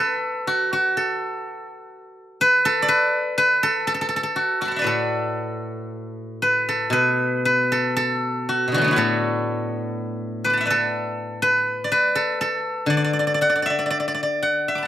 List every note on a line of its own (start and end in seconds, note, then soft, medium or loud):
0.00 0.97 A4 medium
0.00 1.96 B4 medium
0.47 0.72 F#4 medium
0.73 3.16 F#4 medium
0.97 2.65 A4 medium
2.41 2.88 B4 medium
2.65 3.63 A4 medium
2.82 4.67 D5 medium
2.88 3.37 B4 medium
3.38 4.81 B4 medium
3.63 3.87 A4 medium
3.87 3.94 A4 medium
3.94 4.01 A4 medium
4.01 4.08 A4 medium
4.09 4.16 A4 medium
4.16 4.23 A4 medium
4.23 4.86 A4 medium
4.36 4.61 F#4 medium
4.61 7.05 F#4 medium
4.61 5.83 D6 soft
4.65 6.13 A5 soft
4.65 6.00 B5 soft
4.71 6.32 F#5 soft
4.76 6.63 D5 soft
4.76 6.48 E5 soft
4.82 6.92 A2 soft
4.82 6.42 B4 soft
4.87 6.68 A4 medium
6.42 6.92 B4 medium
6.69 7.71 A4 medium
6.90 8.66 B2 soft
6.90 7.45 B4 medium
7.45 9.50 B4 medium
7.72 7.96 A4 medium
7.97 8.97 A4 medium
8.49 8.74 F#4 medium
8.68 8.88 B2 soft
8.72 8.97 D3 soft
8.72 8.94 E3 soft
8.72 8.92 F#4 medium
8.78 8.97 F#3 soft
8.78 12.14 A3 soft
8.84 11.94 B3 soft
8.84 11.68 D4 soft
8.91 11.52 E4 soft
8.91 11.36 F#4 soft
8.96 11.90 A2 medium
8.96 10.70 A4 medium
10.44 10.66 B4 medium
10.44 11.68 D6 soft
10.50 11.98 A5 soft
10.50 11.85 B5 soft
10.57 12.33 E5 soft
10.57 12.18 F#5 soft
10.66 11.42 B4 soft
10.66 11.84 D5 soft
10.70 12.15 A4 medium
11.42 11.91 B4 medium
11.84 12.90 D5 medium
11.92 13.96 B4 medium
12.15 12.40 A4 medium
12.41 14.60 A4 medium
12.86 14.87 D3 medium
12.86 12.97 D5 medium
12.97 13.04 D5 soft
13.04 13.13 D5 medium
13.13 13.19 D5 soft
13.19 13.27 D5 medium
13.27 13.34 D5 soft
13.34 13.41 D5 medium
13.41 13.49 D5 soft
13.41 14.42 F#5 medium
13.50 13.55 D5 soft
13.56 13.62 D5 soft
13.62 13.70 D5 soft
13.62 14.68 E5 medium
13.70 13.78 D5 soft
13.79 13.85 D5 soft
13.86 13.90 D5 soft
13.90 13.99 D5 medium
14.00 14.07 D5 soft
14.08 14.14 D5 medium
14.14 14.22 D5 soft
14.23 14.87 D5 medium
14.43 14.85 F#5 medium
14.68 14.87 E5 medium
14.75 14.87 B5 soft
14.75 14.87 D6 soft
14.82 14.87 A5 soft